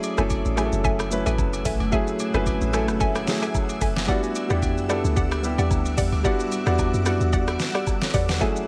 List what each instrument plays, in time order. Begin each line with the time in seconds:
Already playing: grand piano F#3 A3 C#4 E4 G#4, ambient pad A3 F#5 G#5 E6, synth pluck A4 E5 G#5
0.03 high agogo, shaker
0.17 log drum bass F#1, grand piano F#3 A3 C#4 E4 A4, synth pluck A4 E5 G#5, cross-stick, shaker
0.30 kick, high agogo, shaker
0.45 log drum bass A1, shaker
0.56 grand piano F#3 A3 C#4 E4 G#4, synth pluck A4 E5 G#5, cross-stick, high agogo, shaker
0.65 grand piano A4
0.72 log drum bass F#1, shaker
0.84 log drum bass F#1, synth pluck A4 E5 G#5, kick, shaker
0.99 cross-stick, high agogo, shaker
1.10 grand piano F#3 A3 C#4 E4 B4, shaker
1.26 log drum bass A1, synth pluck A4 E5 G#5, high agogo, shaker
1.38 log drum bass F#1, kick, low woodblock, shaker
1.53 high agogo, shaker
1.65 log drum bass A1, synth pluck A4 E5 G#5, kick, open hi-hat, shaker
1.80 log drum bass F#1, high agogo
1.91 grand piano F#3 A3 C#4 E4 G#4, synth pluck A4 E5 G#5, kick, shaker
2.07 shaker
2.19 high agogo, shaker
2.33 log drum bass F#1, grand piano F#3 A3 C#4 E4 B4, synth pluck A4 E5 G#5, cross-stick, shaker
2.46 kick, high agogo, shaker
2.61 log drum bass A1, shaker
2.72 grand piano F#3 A3 C#4 E4 A4, synth pluck A4 E5 G#5, cross-stick, high agogo, shaker
2.88 log drum bass F#1, cross-stick, shaker
3.00 synth pluck A4 E5 G#5, kick, shaker
3.15 cross-stick, high agogo, shaker
3.26 grand piano F#3 A3 C#4 E4 G#4, snare, shaker
3.42 synth pluck A4 E5 G#5, high agogo, shaker
3.55 kick, low woodblock, shaker
3.69 high agogo, shaker
3.81 log drum bass F#1, synth pluck A4 E5 G#5, kick, open hi-hat, shaker
3.96 snare, high agogo
4.07 grand piano G3 B3 D4 E4 F#4, ambient pad G3 D6, synth pluck G4 D5 F#5, kick, shaker
4.23 shaker
4.35 high agogo, shaker
4.49 log drum bass E2, grand piano G3 B3 D4 E4 G4, synth pluck G4 D5 F#5, cross-stick, shaker
4.62 kick, high agogo, shaker
4.77 log drum bass F#2, shaker
4.88 grand piano G3 B3 D4 E4 A4, synth pluck G4 D5 F#5, cross-stick, high agogo, shaker
5.04 log drum bass D2, shaker
5.16 log drum bass D2, synth pluck G4 D5 F#5, kick, shaker
5.31 cross-stick, high agogo, shaker
5.42 grand piano G3 B3 D4 E4 G4, shaker
5.58 log drum bass E2, synth pluck G4 D5 F#5, high agogo, shaker
5.71 log drum bass D2, kick, low woodblock, shaker
5.86 high agogo, shaker
5.97 log drum bass E2, synth pluck G4 D5 F#5, kick, open hi-hat, shaker
6.12 log drum bass D2, high agogo
6.23 grand piano G3 B3 D4 E4 F#4, synth pluck G4 D5 F#5, kick, shaker
6.40 shaker
6.52 high agogo, shaker
6.65 log drum bass E2, grand piano G3 B3 D4 E4 F#4, synth pluck G4 D5 F#5, cross-stick, shaker
6.79 kick, high agogo, low woodblock, shaker
6.94 log drum bass F#2, shaker
7.04 grand piano G3 B3 D4 E4 F#4, synth pluck G4 D5 F#5, cross-stick, high agogo, shaker
7.21 log drum bass E2, shaker
7.33 synth pluck G4 D5 F#5, kick, shaker
7.48 cross-stick, high agogo, shaker
7.60 snare, shaker
7.74 synth pluck G4 D5 F#5, cross-stick, high agogo, shaker
7.87 kick, low woodblock, shaker
8.02 grand piano A4 C#5, snare, high agogo, shaker
8.14 log drum bass E2, synth pluck G4 D5 F#5, grand piano B4 D5, kick, open hi-hat, shaker
8.29 grand piano D5 F#5, snare, high agogo, shaker
8.40 grand piano F#3 A3 C#4 E4 G#4, synth pluck A4 E5 G#5, kick, shaker
8.56 shaker